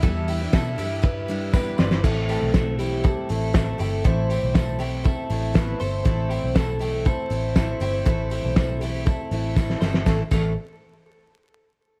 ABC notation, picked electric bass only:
X:1
M:4/4
L:1/16
Q:1/4=120
K:Am
V:1 name="Picked electric bass" clef=bass
E,,4 B,,2 G,,8 G,,,2 | A,,,3 B,,,6 z A,,,4 G,,,2 | A,,,3 B,,,6 z A,,,4 G,,,2 | A,,,3 B,,,6 z A,,,4 G,,,2 |
A,,,3 B,,,6 z A,,,4 G,,,2 | A,,, z A,,,2 z12 |]